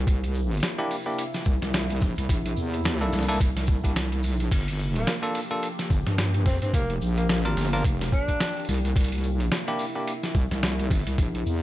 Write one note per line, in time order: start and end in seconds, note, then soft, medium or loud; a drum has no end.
0.07 0.61 C2 medium
0.07 4.48 C3 medium
0.07 11.62 A#3 medium
0.07 4.48 E4 medium
0.07 kick loud
0.07 closed hi-hat medium
0.07 cabasa soft
0.24 closed hi-hat soft
0.24 cabasa soft
0.35 cabasa medium
0.51 closed hi-hat soft
0.51 cabasa soft
0.54 closed hi-hat soft
0.57 closed hi-hat soft
0.60 snare loud
0.60 closed hi-hat soft
0.60 cabasa soft
0.63 closed hi-hat medium
0.78 0.95 A#3 loud
0.78 0.95 D4 loud
0.78 0.95 E4 loud
0.78 0.95 G4 loud
0.78 cabasa soft
0.91 open hi-hat medium
0.91 cabasa medium
1.06 1.23 A#3 medium
1.06 1.23 D4 medium
1.06 1.23 E4 medium
1.06 1.23 G4 loud
1.06 cabasa soft
1.18 closed hi-hat medium
1.18 cabasa medium
1.33 snare soft
1.33 closed hi-hat medium
1.33 cabasa soft
1.45 1.60 C2 loud
1.45 kick medium
1.45 cabasa medium
1.62 2.15 C2 medium
1.62 snare medium
1.62 closed hi-hat soft
1.62 cabasa soft
1.73 snare loud
1.73 closed hi-hat medium
1.73 cabasa medium
1.89 closed hi-hat soft
1.89 cabasa soft
1.92 closed hi-hat soft
1.98 closed hi-hat soft
2.00 kick loud
2.00 snare soft
2.00 closed hi-hat soft
2.00 cabasa medium
2.16 2.28 C2 loud
2.16 closed hi-hat medium
2.16 cabasa soft
2.29 2.55 A#1 medium
2.29 kick loud
2.29 closed hi-hat medium
2.29 cabasa medium
2.45 closed hi-hat soft
2.45 cabasa soft
2.57 3.11 E2 loud
2.57 cabasa medium
2.73 closed hi-hat soft
2.73 cabasa soft
2.84 snare loud
2.84 closed hi-hat medium
2.84 cabasa medium
3.01 3.25 A#3 loud
3.01 3.25 D4 medium
3.01 3.25 E4 medium
3.01 3.25 A4 loud
3.01 closed hi-hat soft
3.01 cabasa soft
3.12 3.39 C2 loud
3.12 snare medium
3.12 open hi-hat soft
3.12 cabasa medium
3.19 snare soft
3.23 snare soft
3.23 open hi-hat soft
3.28 3.38 A#3 loud
3.28 3.38 D4 medium
3.28 3.38 E4 medium
3.28 3.38 A4 loud
3.28 closed hi-hat soft
3.28 open hi-hat medium
3.28 cabasa soft
3.40 3.82 C2 medium
3.40 kick loud
3.40 closed hi-hat medium
3.40 cabasa medium
3.56 snare soft
3.56 closed hi-hat medium
3.56 cabasa soft
3.67 kick loud
3.67 cabasa medium
3.84 4.30 C2 medium
3.84 3.94 A#3 medium
3.84 3.94 D4 medium
3.84 3.94 E4 medium
3.84 3.94 G4 medium
3.84 kick medium
3.84 closed hi-hat soft
3.84 cabasa soft
3.95 snare loud
3.95 closed hi-hat medium
3.95 cabasa medium
4.12 closed hi-hat soft
4.12 cabasa soft
4.23 open hi-hat medium
4.23 cabasa loud
4.30 4.50 B1 medium
4.39 closed hi-hat medium
4.39 cabasa soft
4.51 5.05 G1 medium
4.51 8.93 F3 medium
4.51 8.93 G4 medium
4.51 kick loud
4.51 closed hi-hat medium
4.51 crash medium
4.51 cabasa medium
4.67 closed hi-hat soft
4.67 cabasa soft
4.80 cabasa medium
4.95 5.12 A#3 medium
4.95 closed hi-hat soft
4.95 cabasa soft
5.07 snare loud
5.07 closed hi-hat medium
5.07 cabasa medium
5.23 5.39 A#3 loud
5.23 5.39 D4 medium
5.23 5.39 F4 medium
5.23 5.39 A4 loud
5.23 closed hi-hat soft
5.23 cabasa soft
5.35 open hi-hat medium
5.35 cabasa medium
5.51 5.67 A#3 medium
5.51 5.67 D4 medium
5.51 5.67 F4 medium
5.51 5.67 A4 loud
5.51 cabasa soft
5.63 closed hi-hat medium
5.63 cabasa medium
5.79 snare soft
5.79 closed hi-hat medium
5.79 cabasa soft
5.90 6.04 G1 loud
5.90 kick loud
5.90 cabasa medium
6.07 6.60 G2 medium
6.07 snare medium
6.07 closed hi-hat soft
6.07 cabasa soft
6.18 snare loud
6.18 closed hi-hat medium
6.18 cabasa soft
6.34 closed hi-hat soft
6.34 cabasa soft
6.46 6.56 C4 medium
6.46 kick loud
6.46 snare soft
6.46 open hi-hat medium
6.46 cabasa medium
6.62 6.72 G2 loud
6.62 6.70 C4 medium
6.62 closed hi-hat medium
6.62 cabasa soft
6.74 7.00 F1 loud
6.74 6.93 A#3 medium
6.74 kick loud
6.74 closed hi-hat medium
6.74 cabasa medium
6.90 closed hi-hat soft
6.90 cabasa soft
7.01 7.55 A#1 medium
7.01 cabasa loud
7.17 7.25 A#3 medium
7.17 closed hi-hat soft
7.17 cabasa soft
7.29 7.40 A#3 medium
7.29 snare loud
7.29 closed hi-hat medium
7.29 cabasa medium
7.45 7.69 A#3 loud
7.45 7.69 D4 medium
7.45 7.69 F4 loud
7.45 7.69 A#4 loud
7.45 closed hi-hat soft
7.45 cabasa soft
7.57 7.83 G1 loud
7.57 snare soft
7.57 open hi-hat medium
7.57 cabasa medium
7.61 snare soft
7.65 snare soft
7.69 snare soft
7.73 7.83 A#3 loud
7.73 7.83 D4 loud
7.73 7.83 F4 loud
7.73 7.83 A#4 loud
7.73 snare soft
7.73 cabasa soft
7.79 snare soft
7.82 8.11 F1 loud
7.82 kick loud
7.82 snare soft
7.82 closed hi-hat medium
7.82 cabasa medium
8.01 snare soft
8.01 closed hi-hat medium
8.01 cabasa soft
8.12 8.68 D4 medium
8.12 kick loud
8.12 cabasa loud
8.28 kick medium
8.28 closed hi-hat soft
8.28 cabasa soft
8.40 snare loud
8.40 closed hi-hat medium
8.40 cabasa medium
8.56 closed hi-hat soft
8.56 cabasa soft
8.59 closed hi-hat soft
8.65 8.95 C2 loud
8.65 closed hi-hat soft
8.65 cabasa medium
8.69 closed hi-hat soft
8.69 open hi-hat medium
8.74 closed hi-hat soft
8.78 closed hi-hat soft
8.85 closed hi-hat medium
8.85 cabasa soft
8.96 9.50 C2 loud
8.96 11.62 C3 medium
8.96 11.62 E4 medium
8.96 kick loud
8.96 closed hi-hat medium
8.96 cabasa medium
9.01 closed hi-hat medium
9.04 closed hi-hat medium
9.08 closed hi-hat soft
9.08 cabasa soft
9.12 closed hi-hat soft
9.15 closed hi-hat soft
9.21 closed hi-hat soft
9.21 cabasa loud
9.40 closed hi-hat soft
9.40 cabasa soft
9.52 snare loud
9.52 closed hi-hat medium
9.52 cabasa medium
9.67 9.84 A#3 loud
9.67 9.84 D4 medium
9.67 9.84 E4 loud
9.67 9.84 G4 loud
9.67 closed hi-hat soft
9.67 cabasa soft
9.79 open hi-hat medium
9.79 cabasa loud
9.95 10.12 A#3 loud
9.95 10.12 D4 medium
9.95 10.12 E4 medium
9.95 10.12 G4 loud
9.95 cabasa soft
10.07 closed hi-hat medium
10.07 cabasa medium
10.23 snare soft
10.23 closed hi-hat medium
10.23 cabasa soft
10.35 10.48 C2 loud
10.35 kick loud
10.35 cabasa loud
10.51 11.04 C2 medium
10.51 snare medium
10.51 closed hi-hat soft
10.51 cabasa soft
10.62 snare loud
10.62 closed hi-hat medium
10.62 cabasa soft
10.79 closed hi-hat soft
10.79 cabasa soft
10.90 kick loud
10.90 snare soft
10.90 open hi-hat medium
10.90 cabasa loud
11.07 11.17 C2 loud
11.07 closed hi-hat medium
11.07 cabasa soft
11.18 11.44 A#1 loud
11.18 kick loud
11.18 closed hi-hat medium
11.18 cabasa medium
11.34 closed hi-hat soft
11.34 cabasa soft
11.46 11.62 E2 loud
11.46 cabasa loud